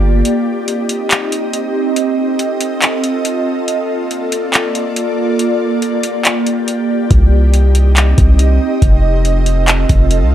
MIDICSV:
0, 0, Header, 1, 4, 480
1, 0, Start_track
1, 0, Tempo, 428571
1, 280, Time_signature, 4, 2, 24, 8
1, 11590, End_track
2, 0, Start_track
2, 0, Title_t, "Ambient pad"
2, 0, Program_c, 0, 92
2, 0, Note_on_c, 0, 58, 83
2, 0, Note_on_c, 0, 65, 77
2, 0, Note_on_c, 0, 67, 77
2, 0, Note_on_c, 0, 74, 92
2, 242, Note_off_c, 0, 58, 0
2, 242, Note_off_c, 0, 65, 0
2, 242, Note_off_c, 0, 74, 0
2, 278, Note_on_c, 0, 60, 86
2, 279, Note_on_c, 0, 63, 78
2, 279, Note_on_c, 0, 75, 94
2, 2160, Note_off_c, 0, 67, 0
2, 2180, Note_off_c, 0, 63, 0
2, 2180, Note_off_c, 0, 75, 0
2, 2199, Note_on_c, 0, 65, 78
2, 2199, Note_on_c, 0, 69, 81
2, 2200, Note_on_c, 0, 75, 98
2, 4081, Note_off_c, 0, 60, 0
2, 4100, Note_off_c, 0, 69, 0
2, 4101, Note_off_c, 0, 75, 0
2, 4120, Note_on_c, 0, 58, 84
2, 4120, Note_on_c, 0, 69, 76
2, 4120, Note_on_c, 0, 74, 96
2, 6021, Note_off_c, 0, 69, 0
2, 6037, Note_on_c, 0, 67, 77
2, 7915, Note_off_c, 0, 65, 0
2, 7921, Note_off_c, 0, 58, 0
2, 7922, Note_off_c, 0, 74, 0
2, 7957, Note_on_c, 0, 60, 82
2, 7957, Note_on_c, 0, 63, 80
2, 7958, Note_on_c, 0, 75, 96
2, 9840, Note_off_c, 0, 67, 0
2, 9859, Note_off_c, 0, 63, 0
2, 9875, Note_on_c, 0, 65, 77
2, 9876, Note_on_c, 0, 69, 80
2, 11590, Note_off_c, 0, 60, 0
2, 11590, Note_off_c, 0, 65, 0
2, 11590, Note_off_c, 0, 69, 0
2, 11590, Note_off_c, 0, 75, 0
2, 11590, End_track
3, 0, Start_track
3, 0, Title_t, "808-style bass"
3, 0, Program_c, 1, 38
3, 0, Note_on_c, 1, 31, 102
3, 251, Note_off_c, 1, 31, 0
3, 7960, Note_on_c, 1, 36, 112
3, 9115, Note_off_c, 1, 36, 0
3, 9161, Note_on_c, 1, 36, 99
3, 9621, Note_off_c, 1, 36, 0
3, 9879, Note_on_c, 1, 29, 111
3, 11035, Note_off_c, 1, 29, 0
3, 11082, Note_on_c, 1, 29, 108
3, 11439, Note_on_c, 1, 36, 99
3, 11456, Note_off_c, 1, 29, 0
3, 11590, Note_off_c, 1, 36, 0
3, 11590, End_track
4, 0, Start_track
4, 0, Title_t, "Drums"
4, 281, Note_on_c, 9, 42, 64
4, 393, Note_off_c, 9, 42, 0
4, 760, Note_on_c, 9, 42, 63
4, 872, Note_off_c, 9, 42, 0
4, 1000, Note_on_c, 9, 42, 67
4, 1112, Note_off_c, 9, 42, 0
4, 1241, Note_on_c, 9, 39, 106
4, 1242, Note_on_c, 9, 42, 79
4, 1353, Note_off_c, 9, 39, 0
4, 1354, Note_off_c, 9, 42, 0
4, 1481, Note_on_c, 9, 42, 64
4, 1593, Note_off_c, 9, 42, 0
4, 1719, Note_on_c, 9, 42, 69
4, 1831, Note_off_c, 9, 42, 0
4, 2199, Note_on_c, 9, 42, 65
4, 2311, Note_off_c, 9, 42, 0
4, 2679, Note_on_c, 9, 42, 62
4, 2791, Note_off_c, 9, 42, 0
4, 2918, Note_on_c, 9, 42, 71
4, 3030, Note_off_c, 9, 42, 0
4, 3159, Note_on_c, 9, 39, 108
4, 3160, Note_on_c, 9, 42, 76
4, 3271, Note_off_c, 9, 39, 0
4, 3272, Note_off_c, 9, 42, 0
4, 3400, Note_on_c, 9, 42, 64
4, 3512, Note_off_c, 9, 42, 0
4, 3639, Note_on_c, 9, 42, 71
4, 3751, Note_off_c, 9, 42, 0
4, 4121, Note_on_c, 9, 42, 66
4, 4233, Note_off_c, 9, 42, 0
4, 4601, Note_on_c, 9, 42, 62
4, 4713, Note_off_c, 9, 42, 0
4, 4839, Note_on_c, 9, 42, 71
4, 4951, Note_off_c, 9, 42, 0
4, 5080, Note_on_c, 9, 39, 106
4, 5081, Note_on_c, 9, 42, 79
4, 5192, Note_off_c, 9, 39, 0
4, 5193, Note_off_c, 9, 42, 0
4, 5321, Note_on_c, 9, 42, 65
4, 5433, Note_off_c, 9, 42, 0
4, 5559, Note_on_c, 9, 42, 71
4, 5671, Note_off_c, 9, 42, 0
4, 6040, Note_on_c, 9, 42, 64
4, 6152, Note_off_c, 9, 42, 0
4, 6520, Note_on_c, 9, 42, 63
4, 6632, Note_off_c, 9, 42, 0
4, 6758, Note_on_c, 9, 42, 68
4, 6870, Note_off_c, 9, 42, 0
4, 7000, Note_on_c, 9, 39, 106
4, 7001, Note_on_c, 9, 42, 79
4, 7112, Note_off_c, 9, 39, 0
4, 7113, Note_off_c, 9, 42, 0
4, 7241, Note_on_c, 9, 42, 61
4, 7353, Note_off_c, 9, 42, 0
4, 7479, Note_on_c, 9, 42, 71
4, 7591, Note_off_c, 9, 42, 0
4, 7959, Note_on_c, 9, 36, 115
4, 7959, Note_on_c, 9, 42, 65
4, 8071, Note_off_c, 9, 36, 0
4, 8071, Note_off_c, 9, 42, 0
4, 8440, Note_on_c, 9, 42, 64
4, 8552, Note_off_c, 9, 42, 0
4, 8679, Note_on_c, 9, 42, 70
4, 8791, Note_off_c, 9, 42, 0
4, 8921, Note_on_c, 9, 39, 103
4, 8922, Note_on_c, 9, 42, 77
4, 9033, Note_off_c, 9, 39, 0
4, 9034, Note_off_c, 9, 42, 0
4, 9160, Note_on_c, 9, 42, 64
4, 9161, Note_on_c, 9, 36, 89
4, 9272, Note_off_c, 9, 42, 0
4, 9273, Note_off_c, 9, 36, 0
4, 9398, Note_on_c, 9, 42, 70
4, 9510, Note_off_c, 9, 42, 0
4, 9879, Note_on_c, 9, 36, 114
4, 9880, Note_on_c, 9, 42, 64
4, 9991, Note_off_c, 9, 36, 0
4, 9992, Note_off_c, 9, 42, 0
4, 10359, Note_on_c, 9, 42, 62
4, 10471, Note_off_c, 9, 42, 0
4, 10598, Note_on_c, 9, 42, 66
4, 10710, Note_off_c, 9, 42, 0
4, 10840, Note_on_c, 9, 39, 104
4, 10841, Note_on_c, 9, 42, 78
4, 10952, Note_off_c, 9, 39, 0
4, 10953, Note_off_c, 9, 42, 0
4, 11081, Note_on_c, 9, 42, 62
4, 11082, Note_on_c, 9, 36, 90
4, 11193, Note_off_c, 9, 42, 0
4, 11194, Note_off_c, 9, 36, 0
4, 11320, Note_on_c, 9, 42, 72
4, 11432, Note_off_c, 9, 42, 0
4, 11590, End_track
0, 0, End_of_file